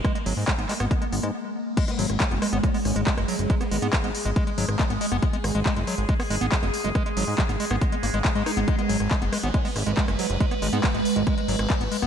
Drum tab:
CC |----------------|x---------------|----------------|----------------|
HH |xxoo-xoxxxox----|xxoxxxoxxooxxxox|xxoxxxoxxxoxxxo-|xxoxxxoxxooxxxox|
CP |----x-x---------|----x-------x---|----x-------x---|----x-------x---|
SD |r---r--r---r----|---r--r---r--r--|-r--r---r--r---r|--r---r--r---r--|
BD |o---o---o-------|o---o---o---o---|o---o---o---o---|o---o---o---o---|

CC |----------------|----------------|----------------|
HH |xxoo-xoxxxoxxxox|xxoxxxo-xooxxxox|xxoxxxoxxxoxxxox|
CP |----x-------x---|----x-------x---|----x-------x---|
SD |r---r--r---r--r-|---r--r---r--r--|-r--r---r--r---r|
BD |o---o---o---o---|o---o---o---o---|o---o---o---o---|